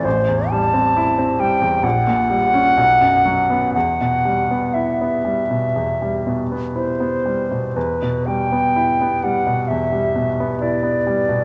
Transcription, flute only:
\new Staff \with { instrumentName = "Flute" } { \time 4/4 \key e \minor \tempo 4 = 63 c''8 a''4 g''8 fis''2 | fis''4 e''2 c''4 | b'8 g''4 fis''8 e''4 d''4 | }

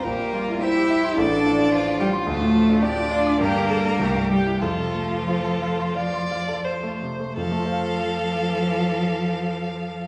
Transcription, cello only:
\new Staff \with { instrumentName = "Cello" } { \time 4/4 \key f \major \tempo 4 = 93 bes4 e'4 d'4. g8 | a4 d'4 bes4. g8 | f2.~ f8 r8 | f1 | }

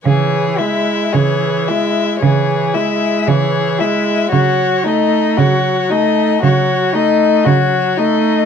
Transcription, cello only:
\new Staff \with { instrumentName = "Cello" } { \clef bass \time 4/4 \key cis \minor \tempo 4 = 57 cis4 cis4 cis4 cis4 | cis4 cis4 cis4 cis4 | }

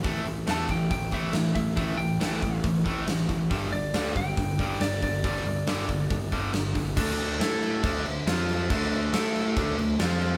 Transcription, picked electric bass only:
\new Staff \with { instrumentName = "Picked electric bass" } { \clef bass \time 4/4 \key d \minor \tempo 4 = 139 a,,8 a,,8 e,8 a,,8 a,,8 a,,8 a,,8 a,,8 | a,,8 a,,8 a,,8 a,,8 a,,8 a,,8 a,,8 a,,8 | g,,8 g,,8 d,8 g,,8 g,,8 g,,8 g,,8 g,,8 | g,,8 g,,8 g,,8 g,,8 g,,8 g,,8 g,,8 g,,8 |
d,4 a,4 d,8 d,8 f,4 | d,4 a,4 d,8 d,8 f,4 | }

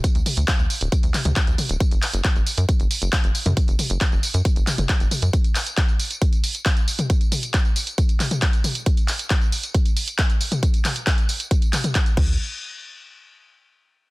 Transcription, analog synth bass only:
\new Staff \with { instrumentName = "Analog synth bass" } { \clef bass \time 4/4 \key fis \phrygian \tempo 4 = 136 r16 d,16 r16 d,16 r16 d,16 r16 d,,16 r16 d,16 r16 d,16 r16 d,16 r16 d,,16 | r16 fis,,16 r16 fis,,16 r16 fis,,16 r16 fis,16 r16 fis,,16 r16 fis,,16 r16 fis,,16 r16 fis,16 | r16 fis,,16 r16 fis,,16 r16 fis,,16 r16 fis,16 r16 fis,,16 r16 fis,,16 r16 fis,,16 r16 fis,16 | r1 |
r1 | r1 | r2. r8 d,8 | r1 | }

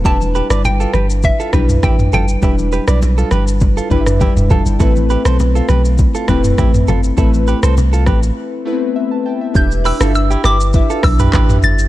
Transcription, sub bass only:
\new Staff \with { instrumentName = "Sub bass" } { \clef bass \time 4/4 \key e \phrygian \tempo 4 = 101 e,,8. g,,8. g,,8. r16 b,,8 a,,8 g,,8 | e,,8. b,,8. g,,4 g,,8. e,,8 g,,16 | a,,8. b,,8. b,,8. r16 e,,8 a,,8 g,,8 | a,,8. c,8. a,,8 r2 |
e,,8. g,,8. g,,8. r16 b,,8 a,,8 g,,8 | }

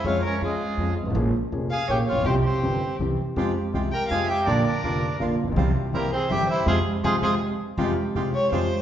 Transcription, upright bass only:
\new Staff \with { instrumentName = "Upright bass" } { \clef bass \time 3/4 \key f \minor \tempo 4 = 163 f,16. r8 r32 f,16. r8 r32 f,16. r16 g,,32 aes,,32 a,,32 | bes,,16. r8 r32 f,,16. r8 r32 bes,,16. r16 a,,32 bes,,32 b,,32 | c,16. r8 r32 g,,16. r8 r32 c,16. r8 r32 | f,16. r8 r32 c,16. r8 r32 f,16. r8 r32 |
bes,,16. r8 r32 f,,16. r8 r32 bes,,16. r16 a,,32 bes,,32 b,,32 | c,16. r8 r32 c,16. r8 r32 g,,16. r8 r32 | f,16. r8 r32 f,16. r32 f,16. r4 r32 | f,16. r8 r32 c,16. r8 r32 f,16. r8 r32 | }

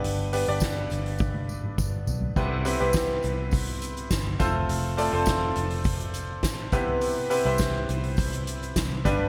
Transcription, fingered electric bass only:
\new Staff \with { instrumentName = "Fingered electric bass" } { \clef bass \time 4/4 \key c \major \tempo 4 = 103 g,,8. g,,8. g,,4. g,,8 b,,8 | c,8. c,8. c,4. g,,8 f,,8 | f,,8. f,,8. f,,4. a,,8 c,8~ | c,8. c,8. c,4. c,8 g,,8 | }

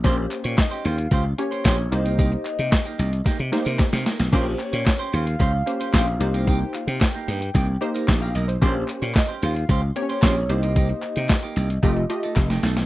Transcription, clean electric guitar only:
\new Staff \with { instrumentName = "Clean electric guitar" } { \time 4/4 \key bes \dorian \tempo 4 = 112 <des' g' c''>16 r8 <des' g' des''>16 r16 <des' g' c''>16 <des' g' c''>16 r16 <des' g' c''>16 r8 <des' g' c''>16 <des' g' c''>16 r8 <bes ees' g'>16 | <bes ees' g'>16 r8 <bes ees' g'>16 r16 <bes ees' g'>16 <bes ees' g'>16 r16 <bes ees' g'>16 r8 <bes ees' bes'>16 r16 <bes ees' g'>16 <bes ees' bes'>16 r16 | <des' g' c''>16 r8 <des' g' des''>16 r16 <des' g' c''>16 <des' g' c''>16 r16 <des' g' c''>16 r8 <des' g' c''>16 <des' g' c''>16 r8 <bes ees' g'>16 | <bes ees' g'>16 r8 <bes ees' g'>16 r16 <bes ees' g'>16 <bes ees' g'>16 r16 <bes ees' g'>16 r8 <bes ees' bes'>16 r16 <bes ees' g'>16 <bes ees' bes'>16 r16 |
<des' g' c''>16 r8 <des' g' des''>16 r16 <des' g' c''>16 <des' g' c''>16 r16 <des' g' c''>16 r8 <des' g' c''>16 <des' g' c''>16 r8 <bes ees' g'>16 | <bes ees' g'>16 r8 <bes ees' g'>16 r16 <bes ees' g'>16 <bes ees' g'>16 r16 <a ees' g'>16 r8 <a ees' a'>16 r16 <a ees' g'>16 <a ees' a'>16 r16 | }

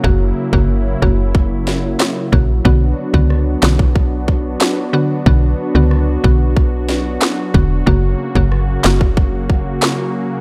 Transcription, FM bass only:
\new Staff \with { instrumentName = "FM bass" } { \clef bass \time 4/4 \key b \minor \tempo 4 = 92 fis,,8 r16 g,,8. fis,,4. r8 ais,,8 | b,,8 r16 cis,8. b,,4. r4 | b,,8 r16 cis,8. b,,4. r8 e,,8 | fis,,8 r16 g,,8. fis,,4. r4 | }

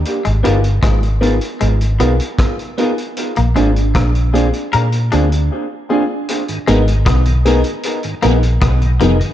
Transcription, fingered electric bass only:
\new Staff \with { instrumentName = "Fingered electric bass" } { \clef bass \time 4/4 \key aes \lydian \tempo 4 = 77 r16 aes,,16 g,,8 aes,,8. r16 aes,,8 ces,16 r4 r16 | r16 bes,,16 aes,,8 bes,,8. r16 bes,8 d,8 r4 | r8 aes,,8 ces,8. r8. bes,,8 ces,8 f,,16 r16 | }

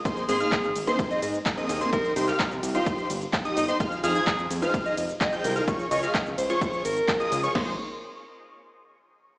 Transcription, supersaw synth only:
\new Staff \with { instrumentName = "Supersaw synth" } { \time 4/4 \key aes \major \tempo 4 = 128 <bes c' ees' aes' c''>8 <bes c' ees' aes' c''>16 <bes c' ees' aes' f''>8 r8 <bes c' ees' aes' c''>8. r8. <bes c' ees' aes' ees''>8 <bes c' ees' aes' c''>16 | <ees' g' c''>8 <ees' g' c''>16 <ees' g' f''>8 r8 <ees' g' c''>8. r8. <ees' g' ees''>8 <ees' g' c''>16 | <ees' f' aes' c'' f''>8 <ees' f' aes' c'' f''>16 <ees' f' aes' c'' aes''>8 r8 <ees' f' aes' c'' f''>8. r8. <ees' f' aes' c'' g''>8 <ees' f' aes' c'' f''>16 | <f' aes' des''>8 <f' aes' des''>16 <f' aes' f''>8 r8 <f' aes' des''>8. r8. <f' aes' ees''>8 <f' aes' des''>16 |
<bes c' ees' aes' c''>8 r2. r8 | }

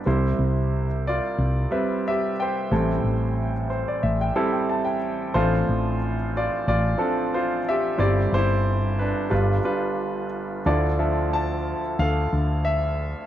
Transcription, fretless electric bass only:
\new Staff \with { instrumentName = "Fretless electric bass" } { \clef bass \time 4/4 \key d \dorian \tempo 4 = 90 c,8 c,4. c,8 r4. | a,,8 a,,4. a,,8 r4. | a,,8 a,,4. a,,8 r4. | g,,8 g,,4. g,,8 r4. |
d,2 d,8 d,4. | }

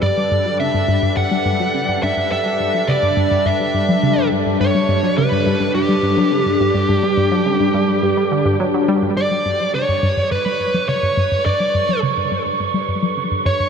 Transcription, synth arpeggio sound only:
\new Staff \with { instrumentName = "Synth arpeggio sound" } { \clef bass \time 4/4 \key g \lydian \tempo 4 = 105 g,16 g16 g,16 fis16 cis16 g,16 g,16 g,16 g,16 g16 g,16 fis16 cis16 g,16 g,16 g,16 | g,16 g16 g,16 fis16 cis16 g,16 g,16 g,16 g,16 g16 g,16 fis16 cis16 g,16 g,16 g,16 | g,16 g16 g,16 fis16 cis16 g,16 g,16 g,16 g,16 g16 g,16 fis16 cis16 g,16 g,16 g,16 | g,16 g16 g,16 fis16 cis16 g,16 g,16 g,16 g,16 g16 d16 g,16 fis16 fis16 g16 g,16 |
g,16 g16 g,16 fis16 cis16 g,16 g,16 g,16 g,16 g16 g,16 fis16 cis16 g,16 g,16 g,16 | g,16 g16 g,16 fis16 cis16 g,16 g,16 g,16 g,16 g16 g,16 fis16 cis16 g,16 g,16 g,16 | }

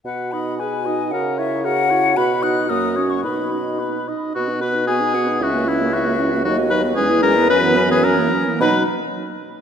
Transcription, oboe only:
\new Staff \with { instrumentName = "Oboe" } { \time 2/4 \key b \major \tempo 4 = 113 b'8 dis''8 b'8 dis''8 | ais'8 cis''8 ais'8 cis''8 | b'8 dis''8 ais'8 cis''8 | b'8 dis''8 b'8 dis''8 |
fis'8 b'8 gis'4 | fis'8 e'8 fis'4 | fis'8 b'8 gis'8 ais'8 | b'8. gis'16 ais'4 |
b'8 r4. | }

